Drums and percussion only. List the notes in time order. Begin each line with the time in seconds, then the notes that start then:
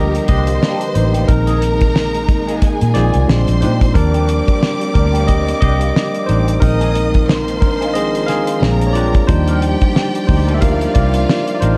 0.15 closed hi-hat
0.28 kick, closed hi-hat
0.47 closed hi-hat
0.63 snare
0.81 closed hi-hat
0.95 closed hi-hat
1.14 closed hi-hat
1.28 kick, closed hi-hat
1.47 closed hi-hat
1.62 closed hi-hat
1.81 kick, closed hi-hat
1.96 snare
2.14 closed hi-hat
2.29 kick, closed hi-hat
2.48 closed hi-hat
2.62 kick, closed hi-hat
2.81 closed hi-hat
2.95 snare, closed hi-hat
3.14 closed hi-hat
3.29 snare
3.48 closed hi-hat
3.62 closed hi-hat
3.81 kick, closed hi-hat
3.95 kick, closed hi-hat
4.14 closed hi-hat
4.29 closed hi-hat
4.48 kick, closed hi-hat
4.63 snare
4.81 closed hi-hat
4.95 kick, closed hi-hat
5.15 closed hi-hat
5.28 kick, closed hi-hat
5.48 closed hi-hat
5.62 kick, closed hi-hat
5.81 closed hi-hat
5.96 snare
6.15 closed hi-hat
6.29 closed hi-hat
6.48 closed hi-hat
6.62 kick, closed hi-hat
6.81 closed hi-hat
6.95 closed hi-hat
7.14 kick, closed hi-hat
7.29 snare
7.48 closed hi-hat
7.62 kick, closed hi-hat
7.82 closed hi-hat
7.95 closed hi-hat
8.15 closed hi-hat
8.28 snare, closed hi-hat
8.47 closed hi-hat
8.63 snare
8.81 closed hi-hat
8.95 closed hi-hat
9.15 kick, closed hi-hat
9.29 kick, closed hi-hat
9.48 closed hi-hat
9.62 closed hi-hat
9.81 kick, closed hi-hat
9.96 snare
10.15 closed hi-hat
10.28 kick, open hi-hat
10.48 closed hi-hat
10.62 kick, closed hi-hat
10.81 closed hi-hat
10.95 kick, closed hi-hat
11.14 closed hi-hat
11.29 snare
11.48 closed hi-hat
11.62 closed hi-hat